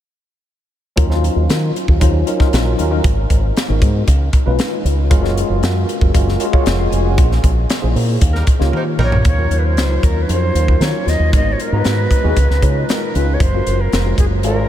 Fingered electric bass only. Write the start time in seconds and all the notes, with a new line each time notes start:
0.98 D#2
1.36 D#2
1.50 D#3
1.88 D#2
2.02 D#2
2.53 A#1
2.79 D#2
3.04 G#1
3.30 G#1
3.69 G#1
3.82 G#2
4.08 C#2
4.46 B1
4.85 C#2
5.11 F#1
5.49 F#1
5.63 F#2
6.01 F#1
6.15 F#1
6.66 F1
6.91 F1
7.18 A#1
7.43 A#1
7.83 A#1
7.96 A#2
8.21 D#2
8.60 C#2
8.98 A#1
9.25 D#2
9.50 D#2
9.76 C#2
10.03 D#2
10.29 F2
10.55 D#2
10.80 D#3
11.07 D#2
11.19 D#2
11.33 G#1
11.72 G#2
11.85 G#2
12.24 D#2
12.37 C#2
12.50 C#2
12.62 C#3
13.15 C#2
13.40 F#1
13.67 F#1
13.93 F1
14.18 F#1
14.44 G#1